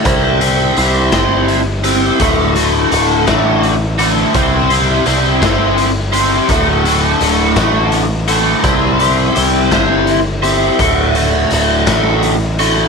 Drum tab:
HH |xxxxxx|xxxxxx|xxxxxx|xxxxxx|
SD |---o--|---o--|---o--|---o--|
BD |o--o--|o--o--|o--o--|o--o--|

HH |xxxxxx|xxxxxx|
SD |---o--|---o--|
BD |o--o--|o--o--|